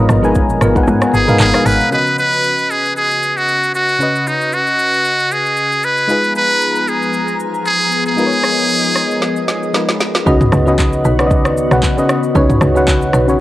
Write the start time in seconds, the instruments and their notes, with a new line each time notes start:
Already playing: ambient pad F3 B3 A#5, fm electric piano G#3 D#4 A#4 B4 C#5 D#5 F5, marimba B3 F4 A#4
0.09 log drum bass G#1, cross-stick, high conga, shaker
0.23 fm electric piano G#3 D#4 A#4 B4 G#5, shaker
0.35 kick, low conga, shaker
0.50 high conga, shaker
0.61 log drum bass G#1, marimba B3 F4 A#4, cross-stick, low conga, shaker
0.75 fm electric piano G#3 D#4 A#4 B4 F#5, kick, shaker
0.83 fm electric piano G#5
0.87 log drum bass G#2, low conga, shaker
1.02 cross-stick, shaker
1.14 log drum bass G#1, muted trumpet G#4, shaker
1.27 fm electric piano G#3 D#4 A#4 B4 F5, mid tom, high conga, shaker
1.39 log drum bass G#1, muted trumpet G#4, clap, shaker
1.53 fm electric piano G#3 D#4 A#4 B4 F5, cross-stick, high conga, shaker
1.66 log drum bass G#1, muted trumpet B4, open hi-hat, shaker
1.80 high conga, shaker
1.90 fm electric piano C#3 C#4 F#4 B4, muted trumpet B4, shaker
1.94 fm electric piano D#5
2.07 shaker
2.18 muted trumpet B4, shaker
2.33 shaker
2.44 shaker
2.58 shaker
2.71 muted trumpet G#4, shaker
2.85 shaker
2.96 muted trumpet G#4, shaker
3.11 shaker
3.23 shaker
3.37 muted trumpet F#4, shaker
3.48 shaker
3.64 shaker
3.75 muted trumpet F#4, shaker
3.89 shaker
3.99 fm electric piano C#3 C#4 F#4 B4, shaker
4.03 fm electric piano D#5
4.16 shaker
4.27 muted trumpet D#4, shaker
4.41 shaker
4.52 muted trumpet F#4, shaker
4.67 shaker
4.79 shaker
4.94 shaker
5.05 shaker
5.19 shaker
5.31 muted trumpet G#4, shaker
5.46 shaker
5.57 shaker
5.72 shaker
5.83 muted trumpet B4, shaker
5.97 shaker
6.08 ambient pad F3 B3 G#4 A#5, fm electric piano G#3 D#4 F4 G#4, shaker
6.12 fm electric piano B4
6.24 shaker
6.35 muted trumpet B4, shaker
6.50 shaker
6.61 shaker
6.76 shaker
6.88 muted trumpet G#4, shaker
7.02 shaker
7.13 shaker
7.28 shaker
7.40 shaker
7.54 shaker
7.66 muted trumpet G#4, shaker
7.81 shaker
7.92 shaker
8.06 muted trumpet G#4, shaker
8.16 fm electric piano G#3 D#4 F4 A#4, ambient pad D#5, shaker
8.20 fm electric piano B4
8.27 fm electric piano C#5
8.33 shaker
8.44 cross-stick, shaker
8.59 shaker
8.70 shaker
8.84 shaker
8.96 cross-stick, shaker
9.11 shaker
9.22 snare, shaker
9.36 shaker
9.48 snare, shaker
9.63 shaker
9.74 fm electric piano G#3 D#4 F4 A#4 B4, snare, shaker
9.89 snare, shaker
10.01 snare, shaker
10.15 snare, shaker
10.26 log drum bass C#2, fm electric piano C#3 C#4 F#4 B4 D#5, ambient pad D#3 B3 F#4, marimba D#4 F#4 B4, kick, shaker
10.41 mid tom, shaker
10.52 log drum bass C#2, cross-stick, shaker
10.66 fm electric piano C#3 C#4 F#4 B4 D#5, shaker
10.78 kick, clap, shaker
10.93 shaker
11.04 log drum bass B1, marimba D#4 F#4 B4, shaker
11.18 fm electric piano C#3 C#4 F#4 B4 D5, cross-stick, shaker
11.27 fm electric piano D#5, shaker
11.31 log drum bass C#2, kick
11.45 cross-stick, shaker
11.57 shaker
11.71 log drum bass B1, fm electric piano C#3 C#4 F#4 B4 F#5, cross-stick, shaker
11.83 kick, clap, shaker
11.97 fm electric piano C#3 C#4 F#4 B4 D#5, shaker
12.09 cross-stick, shaker
12.23 shaker
12.34 log drum bass C#2, fm electric piano C#3 C#4 F#4 B4 C#5, marimba D#4 F#4 B4, kick, shaker
12.50 mid tom, shaker
12.61 log drum bass C#2, cross-stick, shaker
12.75 fm electric piano C#3 C#4 F#4 B4 F#5, shaker
12.87 kick, clap, shaker
13.02 shaker
13.13 log drum bass B1, marimba D#4 F#4 B4, cross-stick, shaker
13.27 fm electric piano C#3 C#4 F#4 B4 C#5, shaker